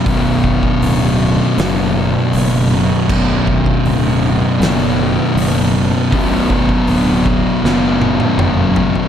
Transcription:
<<
  \new Staff \with { instrumentName = "Synth drone" } { \time 4/4 \key b \minor \tempo 4 = 79 <fis a d'>1~ | <fis a d'>1~ | <fis a d'>1 | }
  \new Staff \with { instrumentName = "Distorted electric guitar" } { \clef bass \time 4/4 \key b \minor <b,, fis, b,>2 <b,, fis, b,>2 | <b,, fis, b,>2 <b,, fis, b,>2 | <b,, fis, b,>2 <b,, fis, b,>2 | }
  \new Staff \with { instrumentName = "Distorted electric guitar" } { \clef bass \time 4/4 \key b \minor <b,, fis, b,>2.~ <b,, fis, b,>8 <b,, fis, b,>8 | <b,, fis, b,>2.~ <b,, fis, b,>8 <b,, fis, b,>8 | <b,, fis, b,>2.~ <b,, fis, b,>8 <b,, fis, b,>8 | }
  \new Staff \with { instrumentName = "Fingered electric bass" } { \clef bass \time 4/4 \key b \minor b,,,4 d,,4 fis,,4 fis,,4 | b,,,4 d,,4 fis,,4 fis,,4 | b,,,4 d,,4 fis,,4 fis,,4 | }
  \new DrumStaff \with { instrumentName = "Drums" } \drummode { \time 4/4 <hho bd>8 bd16 bd16 hho4 <hho sn>4 hho4 | <cymc bd>8 bd16 bd16 hho4 <hho sn>4 hho4 | <hho bd>8 bd16 bd16 hho8 bd8 sn8 tommh16 tommh16 toml8 tomfh16 tomfh16 | }
>>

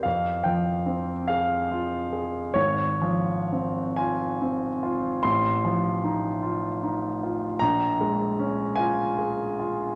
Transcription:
\new Staff \with { instrumentName = "Grand piano" } { \time 12/8 \key f \minor \tempo 4. = 48 << { f''8 g''4 f''4. des''4. aes''4. | c'''2. bes''4. aes''8 r4 | } \\ { f,8 f8 c'8 aes'8 f'8 aes'8 aes,,8 f8 c'8 f'8 c'8 f'8 | a,,8 f8 ees'8 f'8 ees'8 f'8 bes,,8 aes8 des'8 f'8 aes'8 f'8 | } >> }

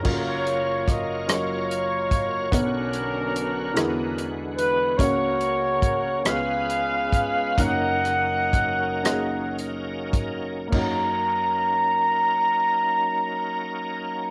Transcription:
<<
  \new Staff \with { instrumentName = "Horn section" } { \time 6/8 \key fis \major \tempo 4. = 47 << { cis''4 dis''8 cis''4. | ais'2 r8 b'8 | cis''4. eis''4. | fis''2 r4 |
ais''2. | } \\ { <eis' ais'>4. <eis' ais'>4. | <cis' d'>2 r4 | <fis' ais'>4. <gis' b'>4. | <ais' dis''>2 r4 |
r2. | } >> }
  \new Staff \with { instrumentName = "Grand piano" } { \time 6/8 \key fis \major <fis cis' eis' ais' cis''>4 r8 <fis cis' eis' ais' dis''>4 r8 | <d b fis' cis''>4 r8 <d b e' fis' gis' ais'>4 r8 | <ais cis' fis' ais' cis''>4 r8 <b cis' eis' gis' b'>4 r8 | <ais cis' dis' fis' ais'>4 r8 <ais cis' dis' fis' gis'>4 r8 |
<ais cis' dis' fis' ais'>2. | }
  \new Staff \with { instrumentName = "Grand piano" } { \clef bass \time 6/8 \key fis \major <fis,, fis,>2. | <b,, b,>4. <e, e>4. | <cis, cis>4. <cis, cis>4. | <fis,, fis,>2. |
fis,2. | }
  \new Staff \with { instrumentName = "Tonewheel organ" } { \time 6/8 \key fis \major ais'2. | fis'2.~ | fis'4. b'4. | ais'2. |
<fis ais cis' dis' ais'>2. | }
  \new Staff \with { instrumentName = "Tonewheel organ" } { \time 6/8 \key fis \major <fis ais eis' cis''>2. | <d b>4. <d e gis b>4. | <cis ais cis'>4. <gis b eis'>4. | <fis ais dis'>2. |
r2. | }
  \new DrumStaff \with { instrumentName = "Drums" } \drummode { \time 6/8 <cymc bd>8 hh8 <hh bd ss>8 <hh ss>8 hh8 <hh bd>8 | <hh bd>8 hh8 hh8 <hh ss>8 hh8 hh8 | <hh bd>8 hh8 <hh bd>8 <hh ss>8 hh8 <hh bd>8 | <hh bd>8 <hh ss>8 <hh bd>8 <hh ss>8 hh8 <hh bd>8 |
<cymc bd>4. r4. | }
>>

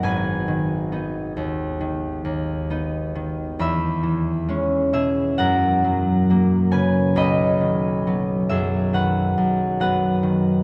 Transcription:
<<
  \new Staff \with { instrumentName = "Harp" } { \time 4/4 \key b \major \tempo 4 = 68 <b' dis'' gis''>1 | <e'' b''>4. <gis' e''>8 <ais' fis''>4. <b' gis''>8 | <dis'' b''>4. <gis' e''>8 <b' fis''>4 <b' fis''>4 | }
  \new Staff \with { instrumentName = "Harp" } { \clef bass \time 4/4 \key b \major <gis,, b dis'>8 dis8 <b dis'>8 dis,8 dis8 dis,8 <b dis'>8 dis8 | e,8 e8 <gis cis'>8 b,8 fis,8 fis8 <fis ais>8 cis8 | b,,8 dis8 <fis b>8 fis,8 dis8 fis,8 <fis b>8 dis8 | }
>>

